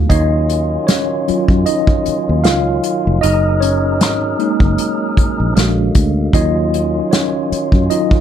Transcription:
Already playing: G#3 B3 D4 F4 F5
0.10 D#2 D#3 F#3 C#4 D#4 F4 D#5, kick, closed hi-hat
0.49 closed hi-hat
0.87 C#4 C#5, snare, closed hi-hat
1.28 F#3 C#4 F4, muted fingered electric bass stroke, closed hi-hat
1.48 F#2, kick
1.66 D#4 D#5, closed hi-hat
1.87 kick
2.06 muted fingered electric bass stroke, closed hi-hat
2.29 D#2
2.44 C#2 F4 F5, snare, closed hi-hat
2.83 closed hi-hat
3.07 F1
3.21 F#1 F#3 D#4 G#4 A#4 D#5, closed hi-hat
3.60 C#4 C#5, closed hi-hat
4.01 G#1, snare, closed hi-hat
4.39 G#3 A#3 D#4, closed hi-hat
4.60 F#1, kick
4.78 closed hi-hat
5.17 muted fingered electric bass stroke, kick, closed hi-hat
5.40 A#1
5.55 A#1 D3 G#3 A#3 D4 F#4, snare, closed hi-hat
5.95 D2, kick, closed hi-hat
6.33 D#2 D#3 F#3 C#4 D#4 F4 D#5, kick, closed hi-hat
6.74 closed hi-hat
7.11 C#4 C#5, snare, closed hi-hat
7.52 muted fingered electric bass stroke, closed hi-hat
7.72 F#2, kick
7.90 F#3 C#4 D#4 F4 D#5, closed hi-hat
8.11 kick

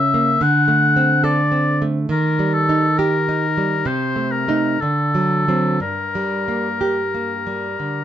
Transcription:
Already playing: C#3 C#4 E5
0.14 A#3
0.41 D3 F#5
0.68 A3
0.96 C4
1.24 A4 D5
1.52 C4
1.82 A3
2.09 D#3 A#4
2.39 G3
2.54 A4
2.69 D#4
2.98 G4 A#4
3.29 D#4
3.57 G3
3.85 C3 C5
4.16 A3
4.31 A#4
4.48 A3 D#4
4.81 D3 A4
5.15 F#3
5.48 F#3 C4
5.80 G2 A#4
6.15 G3
6.48 A#3
6.81 G4
7.15 A#3
7.47 G3
7.80 D3

